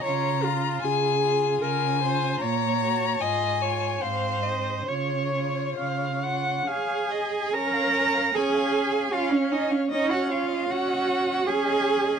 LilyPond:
<<
  \new Staff \with { instrumentName = "Violin" } { \time 3/4 \key des \major \tempo 4 = 75 bes''4 aes''4 aes''4 | bes''4 aes''4 f''8 ees''8 | des''2~ des''8 r8 | aes''16 f''16 aes''16 f''16 aes''16 f''16 aes''16 f''16 aes''16 f''16 aes''16 f''16 |
des''16 ees''16 des''16 ees''16 des''16 ees''16 des''16 ees''16 des''16 ees''16 des''16 ees''16 | }
  \new Staff \with { instrumentName = "Viola" } { \time 3/4 \key des \major des''8 f'8 aes'4 bes'8 c''8 | des''4 ees''8 des''8 c''4 | des''4 f''8 ges''8 f''8 ees''8 | des'4 des'4 des'4 |
des'4 des'4 des'4 | }
  \new Staff \with { instrumentName = "Violin" } { \time 3/4 \key des \major f'8 f'4 f'4 f'8 | r8 ges'8 f'8 f'8 c'8 c'8 | f'8 f'4 f'8 aes''4 | bes''4 aes''4 f''16 des''16 ees''16 des''16 |
ees''16 ges''16 f''8 ges''4 aes''4 | }
  \new Staff \with { instrumentName = "Cello" } { \time 3/4 \key des \major des4 des4 des4 | bes,4 aes,4 aes,4 | des4 des4 aes'4 | bes'4 aes'4 f'16 des'16 ees'16 des'16 |
ees'16 ges'16 f'8 ges'4 aes'4 | }
>>